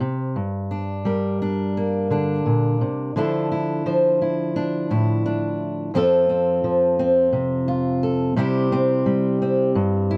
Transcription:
0.00 0.35 C3 medium
0.00 1.06 G4 soft
0.36 2.45 G2 soft
0.71 1.41 D4 soft
1.05 3.11 G3 soft
1.05 3.11 A#4 soft
1.42 2.10 D4 soft
1.77 3.16 A#3 soft
2.10 2.80 D3 soft
2.10 3.16 D4 soft
2.46 2.80 A#2 soft
2.81 3.15 C3 soft
3.16 5.90 D3 medium
3.16 3.85 F3 soft
3.16 4.55 D4 soft
3.16 3.50 E4 soft
3.16 3.86 A4 soft
3.52 4.20 E4 soft
3.86 5.94 F3 medium
3.86 5.90 C5 soft
4.22 4.90 E4 soft
4.56 5.24 D4 soft
4.90 5.90 A2 medium
4.90 5.90 E4 soft
5.26 5.90 D4 soft
5.94 8.37 F2 medium
5.94 6.63 F3 medium
5.94 6.29 C4 medium
5.94 7.67 F4 medium
5.94 8.02 A4 medium
6.29 6.99 C4 soft
6.64 8.37 F3 medium
6.99 8.33 C4 medium
7.33 8.35 C3 medium
7.68 8.33 F4 medium
8.03 8.33 A4 medium
8.36 9.75 C3 medium
8.36 9.05 G3 medium
8.36 8.71 C4 medium
8.36 10.09 E4 medium
8.36 10.17 G4 medium
8.72 9.41 C4 medium
9.06 10.17 G3 medium
9.42 10.17 C4 medium
9.75 10.17 G2 medium
10.11 10.17 E4 medium

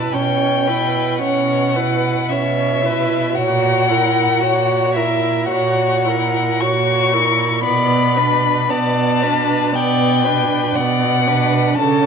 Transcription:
0.00 0.14 E4 soft
0.00 0.16 B4 soft
0.00 0.14 A5 medium
0.12 1.09 B2 soft
0.12 0.70 C#4 soft
0.12 0.69 C#5 soft
0.12 1.19 G5 soft
0.67 1.21 E4 soft
0.67 1.21 B4 soft
1.20 2.17 B2 soft
1.20 1.77 C#4 soft
1.20 1.78 C#5 soft
1.20 2.30 F#5 soft
1.75 2.31 E4 soft
1.75 2.34 B4 soft
2.29 3.24 B2 soft
2.29 2.84 C#4 soft
2.29 2.87 C#5 soft
2.29 3.36 E5 soft
2.82 3.35 E4 soft
2.82 3.37 B4 soft
3.35 4.29 A#2 soft
3.35 3.90 F#4 soft
3.35 3.93 C#5 soft
3.35 4.93 F#5 medium
3.89 4.42 E4 soft
3.89 4.44 A#4 soft
4.41 5.37 A#2 soft
4.41 4.97 F#4 soft
4.41 4.97 C#5 soft
4.94 5.48 E4 soft
4.94 5.48 A#4 soft
4.94 5.47 E5 medium
5.48 6.48 A#2 soft
5.48 6.07 F#4 soft
5.48 6.09 C#5 soft
5.48 6.62 F#5 medium
6.05 6.63 E4 soft
6.05 6.63 A#4 soft
6.60 7.55 A#2 soft
6.60 7.15 F#4 soft
6.60 7.15 C#5 soft
6.60 7.64 C#6 medium
7.13 7.63 E4 soft
7.13 7.65 A#4 soft
7.64 8.59 B2 soft
7.64 8.18 B3 soft
7.64 8.18 D5 soft
7.64 8.71 B5 medium
8.16 8.72 D4 soft
8.16 8.71 B4 soft
8.70 9.64 B2 soft
8.70 9.25 B3 soft
8.70 9.24 D5 soft
8.70 9.77 A5 medium
9.22 9.75 D4 soft
9.22 9.74 B4 soft
9.75 10.66 B2 soft
9.75 10.28 B3 soft
9.75 10.26 D5 soft
9.75 10.77 G5 medium
10.24 10.79 D4 soft
10.24 10.76 B4 soft
10.75 11.67 B2 medium
10.75 11.28 B3 soft
10.75 11.29 D5 soft
10.75 11.78 F#5 medium
11.27 11.79 D4 soft
11.27 11.79 B4 soft
11.79 12.06 C#3 soft
11.79 12.06 C#4 soft
11.79 12.06 A4 soft
11.79 12.06 A5 medium

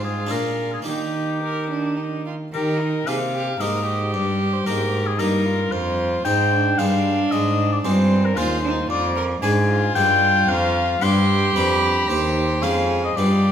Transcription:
0.00 0.27 G#2 soft
0.00 0.33 G#2 medium
0.00 0.27 C4 soft
0.00 0.27 F4 soft
0.00 0.87 F4 medium
0.00 0.29 G#4 soft
0.05 0.32 G#4 medium
0.27 0.83 D4 soft
0.27 0.84 F4 soft
0.27 0.85 G#4 soft
0.31 0.83 A#2 soft
0.31 0.86 A#2 soft
0.31 0.73 A#4 medium
0.73 0.80 G#4 medium
0.82 2.47 A#3 soft
0.82 2.48 D#4 soft
0.82 2.49 G4 soft
0.86 2.29 D#3 soft
0.86 2.30 D#3 medium
0.86 1.37 D#4 medium
0.86 2.23 G4 medium
1.43 1.69 A#4 medium
1.70 1.99 D4 medium
1.97 2.26 D#4 soft
2.26 2.34 F4 soft
2.53 3.04 D#3 medium
2.53 3.04 D#3 soft
2.53 2.82 G4 medium
2.53 3.09 A#4 medium
2.80 3.07 D#4 medium
3.07 3.57 C3 medium
3.07 3.60 C3 medium
3.07 3.46 A#3 soft
3.07 3.46 D#4 soft
3.07 3.46 G4 soft
3.07 3.15 G#4 medium
3.07 3.62 F5 medium
3.35 3.60 G4 medium
3.60 4.10 G#2 soft
3.60 4.15 G#2 medium
3.60 3.99 A#3 soft
3.60 3.99 D#4 soft
3.60 3.99 G4 soft
3.60 3.86 A#4 medium
3.60 4.13 D#5 medium
3.86 5.16 G4 medium
4.13 4.66 G2 medium
4.13 4.63 G2 medium
4.13 4.55 D5 medium
4.54 4.66 C5 medium
4.66 5.15 G#2 medium
4.66 5.21 G#2 medium
4.66 5.05 A#3 soft
4.66 5.05 D#4 soft
4.66 5.05 G4 soft
4.66 5.08 A#4 medium
5.07 5.21 G#4 medium
5.19 5.71 G2 medium
5.19 5.68 G2 medium
5.19 5.57 A#3 soft
5.19 5.47 D#4 medium
5.19 5.58 D#4 soft
5.19 5.58 G4 soft
5.19 5.73 A#4 medium
5.46 6.26 F4 medium
5.72 6.24 F2 medium
5.72 6.21 F2 medium
5.72 6.24 C5 medium
6.25 6.78 G#2 medium
6.25 6.75 G#2 medium
6.25 6.64 G#3 soft
6.25 6.64 C4 soft
6.25 6.54 D#4 medium
6.25 6.64 G#4 medium
6.25 6.80 G5 loud
6.52 7.86 D4 medium
6.79 7.28 G2 medium
6.79 7.31 G2 medium
6.79 7.17 G#3 soft
6.79 7.17 C4 soft
6.79 7.18 G#4 soft
6.79 7.33 F5 medium
7.31 7.83 G#2 medium
7.31 7.81 G#2 medium
7.31 7.83 G#3 medium
7.31 7.71 D#5 medium
7.72 7.78 D5 medium
7.84 8.33 G2 medium
7.84 8.39 G2 medium
7.84 8.23 G#3 medium
7.84 8.36 C4 medium
7.84 8.23 F4 soft
7.84 8.23 G#4 medium
7.84 8.27 C5 medium
8.25 8.39 A#4 medium
8.37 8.86 D#2 medium
8.37 8.89 D#2 medium
8.37 8.75 G#3 medium
8.37 8.63 F4 medium
8.37 8.75 F4 medium
8.37 8.76 G#4 medium
8.37 8.90 C5 loud
8.64 8.89 D#4 medium
8.89 9.42 F2 medium
8.89 9.39 F2 medium
8.89 9.15 F4 medium
8.89 9.24 D5 loud
9.16 9.24 A#4 medium
9.42 9.95 G#2 medium
9.42 9.92 G#2 medium
9.42 9.81 G#3 medium
9.42 9.81 D4 medium
9.42 9.50 G#4 medium
9.42 9.82 G#4 medium
9.42 9.92 G#5 loud
9.68 10.99 F4 medium
9.95 10.45 G2 medium
9.95 10.48 G2 medium
9.95 10.34 G#3 medium
9.95 10.34 D4 soft
9.95 10.35 G#4 medium
9.95 10.51 G5 loud
10.49 10.98 F2 medium
10.49 11.01 F2 medium
10.49 11.05 F5 loud
11.02 11.51 G2 medium
11.02 11.55 G2 medium
11.02 11.40 B3 medium
11.02 11.41 D4 medium
11.02 11.41 G4 medium
11.02 12.64 G4 loud
11.02 11.58 C6 loud
11.56 12.08 F2 medium
11.56 12.05 F2 medium
11.56 11.94 B3 medium
11.56 11.95 D4 medium
11.56 11.95 G4 medium
11.56 12.11 B5 loud
12.09 12.64 D#2 medium
12.09 12.59 D#2 medium
12.09 12.59 C4 soft
12.09 12.60 G4 medium
12.09 12.64 C5 loud
12.62 13.16 F2 medium
12.62 13.13 F2 medium
12.62 13.13 G#3 medium
12.62 13.13 C#4 medium
12.62 13.14 F4 medium
12.62 13.16 G#4 medium
12.62 13.03 F5 loud
13.04 13.18 D#5 medium
13.16 13.52 G2 medium
13.16 13.52 B3 soft
13.16 13.52 F4 soft
13.16 13.52 G4 medium
13.16 13.52 D5 medium

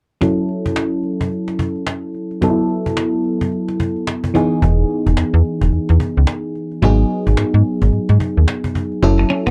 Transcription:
0.21 2.38 F#3 medium
0.21 2.38 C#4 medium
0.21 2.38 E4 medium
0.21 2.39 A4 medium
0.21 cajon bass loud
0.49 cajon slap soft
0.66 cajon bass medium
0.76 cajon slap loud
0.76 cajon slap medium
1.03 cajon slap soft
1.21 cajon bass medium
1.31 cajon slap soft
1.48 cajon slap medium
1.59 cajon bass loud
1.76 cajon slap soft
1.87 cajon slap loud
1.87 cajon slap medium
2.14 cajon slap soft
2.31 cajon slap soft
2.41 4.31 F#3 medium
2.41 4.31 B3 medium
2.41 2.50 D#4 soft
2.41 4.32 A4 medium
2.41 cajon bass loud
2.50 4.35 E4 medium
2.70 cajon slap soft
2.86 cajon bass medium
2.97 cajon slap loud
2.97 cajon slap medium
3.24 cajon slap soft
3.41 cajon bass medium
3.68 cajon slap medium
3.80 cajon bass loud
3.96 cajon slap soft
4.07 cajon slap loud
4.07 cajon slap medium
4.24 cajon bass medium
4.34 6.50 E3 medium
4.34 6.51 B3 medium
4.34 6.51 D#4 medium
4.34 6.52 G#4 medium
4.34 cajon bass medium
4.52 cajon slap soft
4.62 4.84 E1 loud
4.62 cajon bass loud
4.90 cajon slap soft
5.07 5.15 E1 loud
5.07 cajon bass medium
5.17 5.24 E2 medium
5.17 cajon slap loud
5.17 cajon slap medium
5.34 5.43 E2 loud
5.45 cajon slap soft
5.61 5.70 E1 medium
5.61 cajon bass medium
5.73 5.79 E2 soft
5.89 5.98 E2 medium
5.89 cajon slap medium
6.00 cajon bass medium
6.17 6.26 C#2 loud
6.17 cajon slap soft
6.27 cajon slap loud
6.27 cajon slap medium
6.55 cajon slap soft
6.71 cajon slap soft
6.82 7.05 G#1 loud
6.82 8.98 F#3 medium
6.82 8.99 B3 medium
6.82 8.99 D#4 medium
6.82 9.00 G#4 medium
6.82 cajon bass loud
7.10 cajon slap soft
7.27 7.36 G#1 medium
7.27 cajon bass medium
7.37 7.44 G#2 soft
7.37 cajon slap loud
7.37 cajon slap medium
7.54 7.63 G#2 loud
7.65 cajon slap soft
7.82 7.91 G#1 loud
7.82 cajon bass medium
7.93 7.99 G#2 soft
8.09 8.18 G#2 loud
8.09 cajon slap medium
8.20 cajon bass loud
8.37 8.46 D#2 medium
8.48 cajon slap loud
8.48 cajon slap medium
8.64 cajon bass medium
8.75 cajon bass medium
8.92 cajon slap soft
9.03 9.25 F#1 loud
9.03 9.51 F#3 medium
9.03 9.51 C#4 medium
9.03 9.51 E4 medium
9.03 9.51 A4 medium
9.03 cajon bass loud
9.19 muted clean electric guitar stroke soft
9.30 9.43 C#4 medium
9.47 9.51 E1 medium
9.47 9.51 B3 medium
9.47 cajon bass medium

